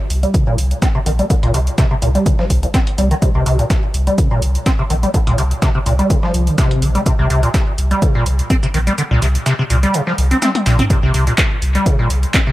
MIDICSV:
0, 0, Header, 1, 4, 480
1, 0, Start_track
1, 0, Tempo, 480000
1, 1302, Time_signature, 4, 2, 24, 8
1, 12522, End_track
2, 0, Start_track
2, 0, Title_t, "Acid bass"
2, 0, Program_c, 0, 38
2, 230, Note_on_c, 0, 55, 73
2, 342, Note_on_c, 0, 48, 97
2, 357, Note_off_c, 0, 55, 0
2, 448, Note_off_c, 0, 48, 0
2, 471, Note_on_c, 0, 46, 97
2, 562, Note_off_c, 0, 46, 0
2, 821, Note_on_c, 0, 60, 99
2, 864, Note_off_c, 0, 60, 0
2, 950, Note_on_c, 0, 48, 101
2, 987, Note_off_c, 0, 48, 0
2, 1061, Note_on_c, 0, 51, 77
2, 1104, Note_off_c, 0, 51, 0
2, 1191, Note_on_c, 0, 55, 76
2, 1252, Note_off_c, 0, 55, 0
2, 1302, Note_on_c, 0, 50, 83
2, 1344, Note_off_c, 0, 50, 0
2, 1430, Note_on_c, 0, 46, 102
2, 1522, Note_off_c, 0, 46, 0
2, 1542, Note_on_c, 0, 48, 78
2, 1584, Note_off_c, 0, 48, 0
2, 1782, Note_on_c, 0, 48, 98
2, 1853, Note_off_c, 0, 48, 0
2, 1910, Note_on_c, 0, 48, 95
2, 1947, Note_off_c, 0, 48, 0
2, 2021, Note_on_c, 0, 46, 75
2, 2092, Note_off_c, 0, 46, 0
2, 2150, Note_on_c, 0, 55, 77
2, 2261, Note_on_c, 0, 48, 80
2, 2276, Note_off_c, 0, 55, 0
2, 2332, Note_off_c, 0, 48, 0
2, 2390, Note_on_c, 0, 53, 73
2, 2451, Note_off_c, 0, 53, 0
2, 2630, Note_on_c, 0, 36, 75
2, 2667, Note_off_c, 0, 36, 0
2, 2741, Note_on_c, 0, 60, 103
2, 2784, Note_off_c, 0, 60, 0
2, 2982, Note_on_c, 0, 55, 76
2, 3088, Note_off_c, 0, 55, 0
2, 3111, Note_on_c, 0, 51, 96
2, 3148, Note_off_c, 0, 51, 0
2, 3221, Note_on_c, 0, 48, 83
2, 3292, Note_off_c, 0, 48, 0
2, 3350, Note_on_c, 0, 48, 100
2, 3442, Note_off_c, 0, 48, 0
2, 3461, Note_on_c, 0, 48, 78
2, 3568, Note_off_c, 0, 48, 0
2, 3590, Note_on_c, 0, 46, 74
2, 3652, Note_off_c, 0, 46, 0
2, 4071, Note_on_c, 0, 55, 75
2, 4182, Note_on_c, 0, 48, 95
2, 4197, Note_off_c, 0, 55, 0
2, 4288, Note_off_c, 0, 48, 0
2, 4311, Note_on_c, 0, 46, 94
2, 4402, Note_off_c, 0, 46, 0
2, 4662, Note_on_c, 0, 60, 101
2, 4704, Note_off_c, 0, 60, 0
2, 4791, Note_on_c, 0, 48, 99
2, 4828, Note_off_c, 0, 48, 0
2, 4902, Note_on_c, 0, 51, 75
2, 4944, Note_off_c, 0, 51, 0
2, 5031, Note_on_c, 0, 55, 73
2, 5092, Note_off_c, 0, 55, 0
2, 5143, Note_on_c, 0, 50, 82
2, 5185, Note_off_c, 0, 50, 0
2, 5270, Note_on_c, 0, 46, 100
2, 5362, Note_off_c, 0, 46, 0
2, 5382, Note_on_c, 0, 48, 74
2, 5424, Note_off_c, 0, 48, 0
2, 5622, Note_on_c, 0, 48, 99
2, 5693, Note_off_c, 0, 48, 0
2, 5750, Note_on_c, 0, 48, 98
2, 5787, Note_off_c, 0, 48, 0
2, 5862, Note_on_c, 0, 46, 77
2, 5933, Note_off_c, 0, 46, 0
2, 5990, Note_on_c, 0, 55, 76
2, 6101, Note_on_c, 0, 48, 83
2, 6116, Note_off_c, 0, 55, 0
2, 6172, Note_off_c, 0, 48, 0
2, 6230, Note_on_c, 0, 53, 73
2, 6469, Note_on_c, 0, 50, 75
2, 6484, Note_off_c, 0, 53, 0
2, 6562, Note_off_c, 0, 50, 0
2, 6580, Note_on_c, 0, 48, 99
2, 6820, Note_on_c, 0, 50, 99
2, 6835, Note_off_c, 0, 48, 0
2, 6892, Note_off_c, 0, 50, 0
2, 6949, Note_on_c, 0, 55, 73
2, 7011, Note_off_c, 0, 55, 0
2, 7061, Note_on_c, 0, 48, 80
2, 7132, Note_off_c, 0, 48, 0
2, 7190, Note_on_c, 0, 48, 102
2, 7282, Note_off_c, 0, 48, 0
2, 7301, Note_on_c, 0, 48, 77
2, 7408, Note_off_c, 0, 48, 0
2, 7430, Note_on_c, 0, 46, 75
2, 7491, Note_off_c, 0, 46, 0
2, 7910, Note_on_c, 0, 55, 74
2, 8022, Note_on_c, 0, 48, 99
2, 8037, Note_off_c, 0, 55, 0
2, 8128, Note_off_c, 0, 48, 0
2, 8151, Note_on_c, 0, 46, 98
2, 8243, Note_off_c, 0, 46, 0
2, 8502, Note_on_c, 0, 60, 98
2, 8544, Note_off_c, 0, 60, 0
2, 8630, Note_on_c, 0, 48, 99
2, 8667, Note_off_c, 0, 48, 0
2, 8742, Note_on_c, 0, 51, 73
2, 8784, Note_off_c, 0, 51, 0
2, 8870, Note_on_c, 0, 55, 75
2, 8932, Note_off_c, 0, 55, 0
2, 8981, Note_on_c, 0, 50, 84
2, 9024, Note_off_c, 0, 50, 0
2, 9110, Note_on_c, 0, 46, 101
2, 9202, Note_off_c, 0, 46, 0
2, 9221, Note_on_c, 0, 48, 74
2, 9264, Note_off_c, 0, 48, 0
2, 9462, Note_on_c, 0, 48, 98
2, 9533, Note_off_c, 0, 48, 0
2, 9591, Note_on_c, 0, 48, 97
2, 9627, Note_off_c, 0, 48, 0
2, 9702, Note_on_c, 0, 46, 77
2, 9773, Note_off_c, 0, 46, 0
2, 9831, Note_on_c, 0, 55, 77
2, 9942, Note_on_c, 0, 48, 82
2, 9957, Note_off_c, 0, 55, 0
2, 10013, Note_off_c, 0, 48, 0
2, 10070, Note_on_c, 0, 53, 73
2, 10131, Note_off_c, 0, 53, 0
2, 10311, Note_on_c, 0, 60, 74
2, 10372, Note_off_c, 0, 60, 0
2, 10422, Note_on_c, 0, 60, 80
2, 10493, Note_off_c, 0, 60, 0
2, 10662, Note_on_c, 0, 46, 97
2, 10768, Note_off_c, 0, 46, 0
2, 10791, Note_on_c, 0, 60, 99
2, 10828, Note_off_c, 0, 60, 0
2, 10902, Note_on_c, 0, 48, 83
2, 10973, Note_off_c, 0, 48, 0
2, 11031, Note_on_c, 0, 48, 105
2, 11122, Note_off_c, 0, 48, 0
2, 11143, Note_on_c, 0, 48, 78
2, 11249, Note_off_c, 0, 48, 0
2, 11271, Note_on_c, 0, 46, 78
2, 11332, Note_off_c, 0, 46, 0
2, 11751, Note_on_c, 0, 55, 74
2, 11862, Note_on_c, 0, 48, 100
2, 11876, Note_off_c, 0, 55, 0
2, 11968, Note_off_c, 0, 48, 0
2, 11990, Note_on_c, 0, 46, 96
2, 12082, Note_off_c, 0, 46, 0
2, 12342, Note_on_c, 0, 60, 98
2, 12384, Note_off_c, 0, 60, 0
2, 12470, Note_on_c, 0, 48, 104
2, 12507, Note_off_c, 0, 48, 0
2, 12522, End_track
3, 0, Start_track
3, 0, Title_t, "Sub bass"
3, 0, Program_c, 1, 38
3, 102, Note_on_c, 1, 36, 85
3, 253, Note_off_c, 1, 36, 0
3, 582, Note_on_c, 1, 36, 89
3, 733, Note_off_c, 1, 36, 0
3, 1061, Note_on_c, 1, 34, 93
3, 1213, Note_off_c, 1, 34, 0
3, 1431, Note_on_c, 1, 36, 97
3, 1497, Note_off_c, 1, 36, 0
3, 1542, Note_on_c, 1, 36, 79
3, 1693, Note_off_c, 1, 36, 0
3, 2022, Note_on_c, 1, 36, 82
3, 2173, Note_off_c, 1, 36, 0
3, 2501, Note_on_c, 1, 36, 82
3, 2653, Note_off_c, 1, 36, 0
3, 2981, Note_on_c, 1, 36, 94
3, 3133, Note_off_c, 1, 36, 0
3, 3351, Note_on_c, 1, 36, 98
3, 3418, Note_off_c, 1, 36, 0
3, 3461, Note_on_c, 1, 36, 81
3, 3613, Note_off_c, 1, 36, 0
3, 3941, Note_on_c, 1, 36, 85
3, 4093, Note_off_c, 1, 36, 0
3, 4421, Note_on_c, 1, 36, 85
3, 4573, Note_off_c, 1, 36, 0
3, 4902, Note_on_c, 1, 34, 95
3, 5053, Note_off_c, 1, 34, 0
3, 5271, Note_on_c, 1, 36, 100
3, 5338, Note_off_c, 1, 36, 0
3, 5382, Note_on_c, 1, 36, 78
3, 5533, Note_off_c, 1, 36, 0
3, 5863, Note_on_c, 1, 36, 84
3, 6013, Note_off_c, 1, 36, 0
3, 6343, Note_on_c, 1, 36, 88
3, 6493, Note_off_c, 1, 36, 0
3, 6822, Note_on_c, 1, 34, 94
3, 6973, Note_off_c, 1, 34, 0
3, 7191, Note_on_c, 1, 36, 98
3, 7258, Note_off_c, 1, 36, 0
3, 7302, Note_on_c, 1, 36, 83
3, 7453, Note_off_c, 1, 36, 0
3, 7782, Note_on_c, 1, 36, 85
3, 7933, Note_off_c, 1, 36, 0
3, 8262, Note_on_c, 1, 36, 86
3, 8413, Note_off_c, 1, 36, 0
3, 8741, Note_on_c, 1, 34, 97
3, 8893, Note_off_c, 1, 34, 0
3, 9110, Note_on_c, 1, 36, 101
3, 9177, Note_off_c, 1, 36, 0
3, 9222, Note_on_c, 1, 36, 80
3, 9373, Note_off_c, 1, 36, 0
3, 9701, Note_on_c, 1, 36, 84
3, 9853, Note_off_c, 1, 36, 0
3, 10181, Note_on_c, 1, 36, 87
3, 10333, Note_off_c, 1, 36, 0
3, 10661, Note_on_c, 1, 34, 77
3, 10813, Note_off_c, 1, 34, 0
3, 11030, Note_on_c, 1, 36, 98
3, 11097, Note_off_c, 1, 36, 0
3, 11142, Note_on_c, 1, 36, 81
3, 11293, Note_off_c, 1, 36, 0
3, 11621, Note_on_c, 1, 36, 86
3, 11773, Note_off_c, 1, 36, 0
3, 12101, Note_on_c, 1, 36, 88
3, 12253, Note_off_c, 1, 36, 0
3, 12522, End_track
4, 0, Start_track
4, 0, Title_t, "Drums"
4, 102, Note_on_c, 9, 46, 104
4, 102, Note_on_c, 9, 82, 61
4, 202, Note_off_c, 9, 46, 0
4, 202, Note_off_c, 9, 82, 0
4, 232, Note_on_c, 9, 42, 48
4, 332, Note_off_c, 9, 42, 0
4, 342, Note_on_c, 9, 36, 119
4, 342, Note_on_c, 9, 82, 84
4, 343, Note_on_c, 9, 42, 59
4, 442, Note_off_c, 9, 36, 0
4, 442, Note_off_c, 9, 82, 0
4, 443, Note_off_c, 9, 42, 0
4, 582, Note_on_c, 9, 82, 67
4, 583, Note_on_c, 9, 46, 105
4, 682, Note_off_c, 9, 82, 0
4, 683, Note_off_c, 9, 46, 0
4, 711, Note_on_c, 9, 42, 50
4, 811, Note_off_c, 9, 42, 0
4, 821, Note_on_c, 9, 38, 111
4, 821, Note_on_c, 9, 82, 84
4, 822, Note_on_c, 9, 36, 113
4, 822, Note_on_c, 9, 42, 59
4, 921, Note_off_c, 9, 38, 0
4, 921, Note_off_c, 9, 82, 0
4, 922, Note_off_c, 9, 36, 0
4, 922, Note_off_c, 9, 42, 0
4, 1062, Note_on_c, 9, 46, 103
4, 1062, Note_on_c, 9, 82, 64
4, 1162, Note_off_c, 9, 46, 0
4, 1162, Note_off_c, 9, 82, 0
4, 1191, Note_on_c, 9, 42, 49
4, 1291, Note_off_c, 9, 42, 0
4, 1302, Note_on_c, 9, 36, 117
4, 1302, Note_on_c, 9, 42, 60
4, 1302, Note_on_c, 9, 82, 86
4, 1402, Note_off_c, 9, 36, 0
4, 1402, Note_off_c, 9, 42, 0
4, 1402, Note_off_c, 9, 82, 0
4, 1430, Note_on_c, 9, 42, 43
4, 1530, Note_off_c, 9, 42, 0
4, 1541, Note_on_c, 9, 82, 65
4, 1542, Note_on_c, 9, 46, 103
4, 1641, Note_off_c, 9, 82, 0
4, 1642, Note_off_c, 9, 46, 0
4, 1671, Note_on_c, 9, 42, 48
4, 1771, Note_off_c, 9, 42, 0
4, 1781, Note_on_c, 9, 36, 116
4, 1781, Note_on_c, 9, 38, 107
4, 1781, Note_on_c, 9, 82, 84
4, 1782, Note_on_c, 9, 42, 59
4, 1881, Note_off_c, 9, 36, 0
4, 1881, Note_off_c, 9, 38, 0
4, 1881, Note_off_c, 9, 82, 0
4, 1882, Note_off_c, 9, 42, 0
4, 2021, Note_on_c, 9, 82, 64
4, 2022, Note_on_c, 9, 46, 103
4, 2121, Note_off_c, 9, 82, 0
4, 2122, Note_off_c, 9, 46, 0
4, 2151, Note_on_c, 9, 42, 48
4, 2251, Note_off_c, 9, 42, 0
4, 2261, Note_on_c, 9, 36, 122
4, 2261, Note_on_c, 9, 82, 87
4, 2262, Note_on_c, 9, 42, 59
4, 2361, Note_off_c, 9, 36, 0
4, 2361, Note_off_c, 9, 82, 0
4, 2362, Note_off_c, 9, 42, 0
4, 2390, Note_on_c, 9, 38, 40
4, 2490, Note_off_c, 9, 38, 0
4, 2501, Note_on_c, 9, 36, 62
4, 2501, Note_on_c, 9, 46, 106
4, 2501, Note_on_c, 9, 82, 68
4, 2601, Note_off_c, 9, 36, 0
4, 2601, Note_off_c, 9, 46, 0
4, 2601, Note_off_c, 9, 82, 0
4, 2631, Note_on_c, 9, 42, 49
4, 2731, Note_off_c, 9, 42, 0
4, 2741, Note_on_c, 9, 36, 114
4, 2741, Note_on_c, 9, 38, 110
4, 2741, Note_on_c, 9, 82, 82
4, 2742, Note_on_c, 9, 42, 59
4, 2841, Note_off_c, 9, 36, 0
4, 2841, Note_off_c, 9, 38, 0
4, 2841, Note_off_c, 9, 82, 0
4, 2842, Note_off_c, 9, 42, 0
4, 2870, Note_on_c, 9, 42, 45
4, 2970, Note_off_c, 9, 42, 0
4, 2981, Note_on_c, 9, 82, 66
4, 2982, Note_on_c, 9, 46, 106
4, 3081, Note_off_c, 9, 82, 0
4, 3082, Note_off_c, 9, 46, 0
4, 3111, Note_on_c, 9, 42, 46
4, 3211, Note_off_c, 9, 42, 0
4, 3221, Note_on_c, 9, 36, 109
4, 3221, Note_on_c, 9, 82, 88
4, 3222, Note_on_c, 9, 42, 60
4, 3321, Note_off_c, 9, 36, 0
4, 3321, Note_off_c, 9, 82, 0
4, 3322, Note_off_c, 9, 42, 0
4, 3461, Note_on_c, 9, 82, 63
4, 3462, Note_on_c, 9, 46, 99
4, 3561, Note_off_c, 9, 82, 0
4, 3562, Note_off_c, 9, 46, 0
4, 3591, Note_on_c, 9, 42, 48
4, 3691, Note_off_c, 9, 42, 0
4, 3701, Note_on_c, 9, 38, 114
4, 3701, Note_on_c, 9, 82, 83
4, 3702, Note_on_c, 9, 36, 116
4, 3702, Note_on_c, 9, 42, 59
4, 3801, Note_off_c, 9, 38, 0
4, 3801, Note_off_c, 9, 82, 0
4, 3802, Note_off_c, 9, 36, 0
4, 3802, Note_off_c, 9, 42, 0
4, 3942, Note_on_c, 9, 46, 100
4, 3942, Note_on_c, 9, 82, 65
4, 4042, Note_off_c, 9, 46, 0
4, 4042, Note_off_c, 9, 82, 0
4, 4071, Note_on_c, 9, 42, 49
4, 4171, Note_off_c, 9, 42, 0
4, 4182, Note_on_c, 9, 36, 119
4, 4182, Note_on_c, 9, 42, 60
4, 4182, Note_on_c, 9, 82, 86
4, 4281, Note_off_c, 9, 82, 0
4, 4282, Note_off_c, 9, 36, 0
4, 4282, Note_off_c, 9, 42, 0
4, 4422, Note_on_c, 9, 46, 100
4, 4422, Note_on_c, 9, 82, 67
4, 4522, Note_off_c, 9, 46, 0
4, 4522, Note_off_c, 9, 82, 0
4, 4551, Note_on_c, 9, 42, 50
4, 4651, Note_off_c, 9, 42, 0
4, 4661, Note_on_c, 9, 38, 113
4, 4661, Note_on_c, 9, 82, 86
4, 4662, Note_on_c, 9, 36, 110
4, 4662, Note_on_c, 9, 42, 60
4, 4761, Note_off_c, 9, 38, 0
4, 4761, Note_off_c, 9, 82, 0
4, 4762, Note_off_c, 9, 36, 0
4, 4762, Note_off_c, 9, 42, 0
4, 4902, Note_on_c, 9, 46, 96
4, 4902, Note_on_c, 9, 82, 66
4, 5002, Note_off_c, 9, 46, 0
4, 5002, Note_off_c, 9, 82, 0
4, 5031, Note_on_c, 9, 42, 48
4, 5131, Note_off_c, 9, 42, 0
4, 5142, Note_on_c, 9, 36, 106
4, 5142, Note_on_c, 9, 42, 60
4, 5142, Note_on_c, 9, 82, 86
4, 5242, Note_off_c, 9, 36, 0
4, 5242, Note_off_c, 9, 42, 0
4, 5242, Note_off_c, 9, 82, 0
4, 5271, Note_on_c, 9, 42, 44
4, 5371, Note_off_c, 9, 42, 0
4, 5381, Note_on_c, 9, 82, 64
4, 5382, Note_on_c, 9, 46, 96
4, 5481, Note_off_c, 9, 82, 0
4, 5482, Note_off_c, 9, 46, 0
4, 5511, Note_on_c, 9, 42, 51
4, 5611, Note_off_c, 9, 42, 0
4, 5621, Note_on_c, 9, 38, 115
4, 5621, Note_on_c, 9, 82, 85
4, 5622, Note_on_c, 9, 36, 107
4, 5622, Note_on_c, 9, 42, 62
4, 5721, Note_off_c, 9, 38, 0
4, 5721, Note_off_c, 9, 82, 0
4, 5722, Note_off_c, 9, 36, 0
4, 5722, Note_off_c, 9, 42, 0
4, 5861, Note_on_c, 9, 82, 63
4, 5862, Note_on_c, 9, 46, 95
4, 5961, Note_off_c, 9, 82, 0
4, 5962, Note_off_c, 9, 46, 0
4, 5991, Note_on_c, 9, 42, 51
4, 6091, Note_off_c, 9, 42, 0
4, 6102, Note_on_c, 9, 36, 110
4, 6102, Note_on_c, 9, 42, 63
4, 6102, Note_on_c, 9, 82, 83
4, 6202, Note_off_c, 9, 36, 0
4, 6202, Note_off_c, 9, 42, 0
4, 6202, Note_off_c, 9, 82, 0
4, 6231, Note_on_c, 9, 38, 40
4, 6331, Note_off_c, 9, 38, 0
4, 6342, Note_on_c, 9, 46, 100
4, 6342, Note_on_c, 9, 82, 67
4, 6442, Note_off_c, 9, 46, 0
4, 6442, Note_off_c, 9, 82, 0
4, 6471, Note_on_c, 9, 42, 51
4, 6571, Note_off_c, 9, 42, 0
4, 6581, Note_on_c, 9, 38, 116
4, 6581, Note_on_c, 9, 82, 85
4, 6582, Note_on_c, 9, 36, 110
4, 6582, Note_on_c, 9, 42, 62
4, 6681, Note_off_c, 9, 38, 0
4, 6681, Note_off_c, 9, 82, 0
4, 6682, Note_off_c, 9, 36, 0
4, 6682, Note_off_c, 9, 42, 0
4, 6711, Note_on_c, 9, 42, 44
4, 6811, Note_off_c, 9, 42, 0
4, 6822, Note_on_c, 9, 46, 98
4, 6822, Note_on_c, 9, 82, 66
4, 6922, Note_off_c, 9, 46, 0
4, 6922, Note_off_c, 9, 82, 0
4, 6951, Note_on_c, 9, 42, 50
4, 7051, Note_off_c, 9, 42, 0
4, 7062, Note_on_c, 9, 36, 109
4, 7062, Note_on_c, 9, 42, 64
4, 7062, Note_on_c, 9, 82, 85
4, 7162, Note_off_c, 9, 36, 0
4, 7162, Note_off_c, 9, 42, 0
4, 7162, Note_off_c, 9, 82, 0
4, 7302, Note_on_c, 9, 46, 93
4, 7302, Note_on_c, 9, 82, 66
4, 7401, Note_off_c, 9, 82, 0
4, 7402, Note_off_c, 9, 46, 0
4, 7431, Note_on_c, 9, 42, 52
4, 7531, Note_off_c, 9, 42, 0
4, 7541, Note_on_c, 9, 38, 110
4, 7541, Note_on_c, 9, 82, 86
4, 7542, Note_on_c, 9, 36, 109
4, 7542, Note_on_c, 9, 42, 63
4, 7641, Note_off_c, 9, 38, 0
4, 7641, Note_off_c, 9, 82, 0
4, 7642, Note_off_c, 9, 36, 0
4, 7642, Note_off_c, 9, 42, 0
4, 7781, Note_on_c, 9, 82, 64
4, 7782, Note_on_c, 9, 46, 94
4, 7881, Note_off_c, 9, 82, 0
4, 7882, Note_off_c, 9, 46, 0
4, 7911, Note_on_c, 9, 42, 50
4, 8011, Note_off_c, 9, 42, 0
4, 8021, Note_on_c, 9, 36, 111
4, 8021, Note_on_c, 9, 82, 85
4, 8022, Note_on_c, 9, 42, 62
4, 8121, Note_off_c, 9, 36, 0
4, 8121, Note_off_c, 9, 82, 0
4, 8122, Note_off_c, 9, 42, 0
4, 8261, Note_on_c, 9, 82, 80
4, 8262, Note_on_c, 9, 46, 101
4, 8361, Note_off_c, 9, 82, 0
4, 8362, Note_off_c, 9, 46, 0
4, 8391, Note_on_c, 9, 42, 53
4, 8491, Note_off_c, 9, 42, 0
4, 8501, Note_on_c, 9, 36, 105
4, 8501, Note_on_c, 9, 82, 61
4, 8502, Note_on_c, 9, 42, 65
4, 8601, Note_off_c, 9, 36, 0
4, 8601, Note_off_c, 9, 82, 0
4, 8602, Note_off_c, 9, 42, 0
4, 8630, Note_on_c, 9, 82, 81
4, 8730, Note_off_c, 9, 82, 0
4, 8742, Note_on_c, 9, 46, 92
4, 8842, Note_off_c, 9, 46, 0
4, 8870, Note_on_c, 9, 82, 62
4, 8871, Note_on_c, 9, 42, 51
4, 8970, Note_off_c, 9, 82, 0
4, 8971, Note_off_c, 9, 42, 0
4, 8981, Note_on_c, 9, 82, 76
4, 8982, Note_on_c, 9, 42, 64
4, 9081, Note_off_c, 9, 82, 0
4, 9082, Note_off_c, 9, 42, 0
4, 9221, Note_on_c, 9, 82, 58
4, 9222, Note_on_c, 9, 46, 98
4, 9321, Note_off_c, 9, 82, 0
4, 9322, Note_off_c, 9, 46, 0
4, 9351, Note_on_c, 9, 42, 56
4, 9451, Note_off_c, 9, 42, 0
4, 9461, Note_on_c, 9, 38, 115
4, 9461, Note_on_c, 9, 42, 66
4, 9461, Note_on_c, 9, 82, 85
4, 9561, Note_off_c, 9, 38, 0
4, 9561, Note_off_c, 9, 42, 0
4, 9561, Note_off_c, 9, 82, 0
4, 9701, Note_on_c, 9, 82, 65
4, 9702, Note_on_c, 9, 46, 93
4, 9801, Note_off_c, 9, 82, 0
4, 9802, Note_off_c, 9, 46, 0
4, 9831, Note_on_c, 9, 42, 53
4, 9931, Note_off_c, 9, 42, 0
4, 9941, Note_on_c, 9, 82, 84
4, 9942, Note_on_c, 9, 42, 65
4, 10041, Note_off_c, 9, 82, 0
4, 10042, Note_off_c, 9, 42, 0
4, 10070, Note_on_c, 9, 38, 40
4, 10170, Note_off_c, 9, 38, 0
4, 10182, Note_on_c, 9, 46, 101
4, 10282, Note_off_c, 9, 46, 0
4, 10311, Note_on_c, 9, 42, 56
4, 10411, Note_off_c, 9, 42, 0
4, 10421, Note_on_c, 9, 38, 116
4, 10421, Note_on_c, 9, 82, 87
4, 10422, Note_on_c, 9, 42, 67
4, 10422, Note_on_c, 9, 48, 56
4, 10521, Note_off_c, 9, 38, 0
4, 10521, Note_off_c, 9, 82, 0
4, 10522, Note_off_c, 9, 42, 0
4, 10522, Note_off_c, 9, 48, 0
4, 10550, Note_on_c, 9, 42, 44
4, 10551, Note_on_c, 9, 48, 62
4, 10650, Note_off_c, 9, 42, 0
4, 10651, Note_off_c, 9, 48, 0
4, 10661, Note_on_c, 9, 38, 99
4, 10661, Note_on_c, 9, 82, 77
4, 10662, Note_on_c, 9, 46, 98
4, 10761, Note_off_c, 9, 38, 0
4, 10761, Note_off_c, 9, 82, 0
4, 10762, Note_off_c, 9, 46, 0
4, 10790, Note_on_c, 9, 42, 53
4, 10790, Note_on_c, 9, 45, 82
4, 10890, Note_off_c, 9, 42, 0
4, 10890, Note_off_c, 9, 45, 0
4, 10901, Note_on_c, 9, 36, 114
4, 10901, Note_on_c, 9, 82, 84
4, 10902, Note_on_c, 9, 42, 63
4, 11001, Note_off_c, 9, 36, 0
4, 11001, Note_off_c, 9, 82, 0
4, 11002, Note_off_c, 9, 42, 0
4, 11141, Note_on_c, 9, 46, 100
4, 11141, Note_on_c, 9, 82, 65
4, 11241, Note_off_c, 9, 46, 0
4, 11241, Note_off_c, 9, 82, 0
4, 11270, Note_on_c, 9, 42, 53
4, 11370, Note_off_c, 9, 42, 0
4, 11381, Note_on_c, 9, 36, 118
4, 11381, Note_on_c, 9, 38, 113
4, 11381, Note_on_c, 9, 42, 65
4, 11381, Note_on_c, 9, 82, 85
4, 11382, Note_on_c, 9, 39, 116
4, 11481, Note_off_c, 9, 36, 0
4, 11481, Note_off_c, 9, 38, 0
4, 11481, Note_off_c, 9, 42, 0
4, 11481, Note_off_c, 9, 82, 0
4, 11482, Note_off_c, 9, 39, 0
4, 11621, Note_on_c, 9, 46, 100
4, 11621, Note_on_c, 9, 82, 65
4, 11721, Note_off_c, 9, 46, 0
4, 11721, Note_off_c, 9, 82, 0
4, 11750, Note_on_c, 9, 42, 53
4, 11850, Note_off_c, 9, 42, 0
4, 11860, Note_on_c, 9, 82, 84
4, 11861, Note_on_c, 9, 36, 117
4, 11862, Note_on_c, 9, 42, 63
4, 11960, Note_off_c, 9, 82, 0
4, 11961, Note_off_c, 9, 36, 0
4, 11962, Note_off_c, 9, 42, 0
4, 12101, Note_on_c, 9, 82, 68
4, 12102, Note_on_c, 9, 46, 105
4, 12201, Note_off_c, 9, 82, 0
4, 12202, Note_off_c, 9, 46, 0
4, 12231, Note_on_c, 9, 42, 53
4, 12331, Note_off_c, 9, 42, 0
4, 12341, Note_on_c, 9, 36, 115
4, 12341, Note_on_c, 9, 38, 113
4, 12341, Note_on_c, 9, 82, 89
4, 12342, Note_on_c, 9, 39, 116
4, 12342, Note_on_c, 9, 42, 66
4, 12441, Note_off_c, 9, 36, 0
4, 12441, Note_off_c, 9, 38, 0
4, 12441, Note_off_c, 9, 82, 0
4, 12442, Note_off_c, 9, 39, 0
4, 12442, Note_off_c, 9, 42, 0
4, 12522, End_track
0, 0, End_of_file